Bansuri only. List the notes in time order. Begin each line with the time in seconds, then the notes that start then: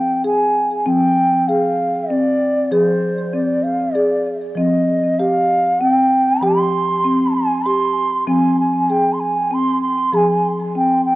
Already playing: G5
0.26 G#5
0.79 G#5
0.87 G5
1.48 F5
2.11 D5
2.72 C5
3.34 D5
3.63 F5
3.94 D5
4.56 D#5
5.19 F5
5.80 G5
6.43 C6
7.34 G#5
7.66 C6
8.28 G#5
8.60 G#5
8.90 G5
9.13 C6
9.21 G#5
9.54 C6
9.82 C6
10.15 G#5
10.77 G5
11.05 G5